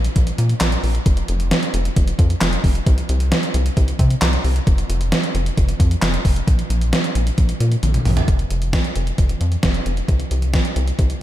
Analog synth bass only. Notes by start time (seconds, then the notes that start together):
0.16 A#1
0.38 A#2
0.61 A#1
0.83 A#1
1.06 F1
1.29 F1
1.74 F1
1.97 F1
2.19 F2
2.42 F1
2.64 F1
2.87 C2
3.09 C2
3.54 C2
3.77 C2
3.99 C3
4.22 C2
4.44 C2
4.67 F1
4.89 F1
5.35 F1
5.58 F1
5.80 F2
6.02 F1
6.25 F1
6.47 A#1
6.70 A#1
7.15 A#1
7.38 A#1
7.60 A#2
7.83 A#1
8.06 A#1
8.28 F1
8.51 F1
8.96 F1
9.18 F1
9.41 F2
9.63 F1
9.86 F1
10.08 C2
10.31 C2
10.76 C2
10.99 C2